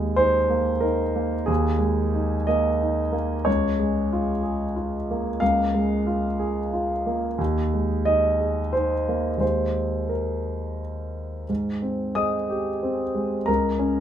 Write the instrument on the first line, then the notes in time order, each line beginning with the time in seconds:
grand piano
Already playing: D#2 G#3
0.16 D#4 C5
0.50 A#3
0.81 D#4 A#4
1.16 A#3
1.46 D#2 G#4
1.79 G#3
2.13 D#4
2.47 A#3 D#5
2.81 D#4
3.12 A#3
3.45 C#2 C#5
3.79 G#3
4.13 F4
4.43 G#4
4.76 F4
5.11 A#3
5.40 C#2 F5
5.74 G#3
6.07 F4
6.39 G#4
6.73 F4
7.06 A#3
7.38 D#2
7.74 G#3
8.05 D#4 D#5
8.40 G#4
8.73 D#4 C5
9.08 A#3
9.37 D#2 G#3 A#3 D#4 C5
10.09 A#4
11.49 G#2
11.82 C4
12.15 G#3 D#5 D#6
12.50 G4
12.83 C4
13.15 G#3
13.46 C#2 A#4 A#5
13.79 C#4